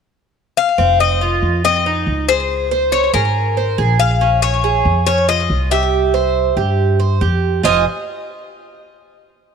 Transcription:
0.57 F5
0.78 F1 C4
1.00 D#5
1.21 F4
1.42 F2
1.64 C4 D#5
1.86 D#4
2.07 C#2
2.29 G#4 C5
2.71 C5
2.92 C#5
3.14 G#1 G#4 A#4
3.57 C5
3.78 A#1 G#4
4.00 F5
4.21 C#4
4.42 C#5
4.64 G#4
4.85 F2
5.06 C#4 C#5
5.28 F4 D#5
5.50 C2
5.71 G4 E5
6.14 C5
6.56 G2 G4
7.00 C5
7.21 F2 G4
7.63 F1 F4 C5 D#5 G#5

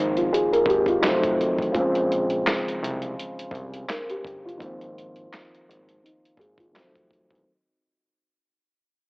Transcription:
Already playing: G#1 D#3 F3 A#3 C4
0.00 closed hi-hat
0.17 F4, closed hi-hat
0.33 G#4, closed hi-hat
0.53 A#4, closed hi-hat
0.66 G#1 G4, kick
0.70 closed hi-hat
0.86 F4, kick, closed hi-hat
1.01 F1 D#3 F#3, snare, clap
1.05 A3 C4, closed hi-hat
1.24 kick, closed hi-hat
1.41 closed hi-hat
1.59 A1, kick, closed hi-hat
1.72 A#1 C#3 F3, kick, closed hi-hat
1.76 G#3 C4
1.95 closed hi-hat
2.12 closed hi-hat
2.30 closed hi-hat
2.47 snare, clap, closed hi-hat
2.68 closed hi-hat
2.83 C2, closed hi-hat
3.02 closed hi-hat
3.19 closed hi-hat
3.39 closed hi-hat
3.51 C2, kick, closed hi-hat
3.74 closed hi-hat
3.89 A#4, snare, clap, closed hi-hat
4.09 G4, closed hi-hat
4.25 G1, kick, closed hi-hat
4.45 F4, closed hi-hat
4.57 G#1 D#3 F3, kick
4.62 A#3 C4, closed hi-hat
4.81 closed hi-hat
4.98 closed hi-hat
5.16 closed hi-hat
5.33 snare, clap, closed hi-hat
5.55 closed hi-hat
5.69 G#1, closed hi-hat
5.89 closed hi-hat
6.04 D#4, closed hi-hat
6.25 closed hi-hat
6.37 G#1 G#4, kick, closed hi-hat
6.58 F4, kick, closed hi-hat
6.71 D#3 F#3, clap
6.76 F1 A3 C4, snare, closed hi-hat
6.95 kick, closed hi-hat
7.11 kick, closed hi-hat
7.31 E1, kick
7.35 closed hi-hat

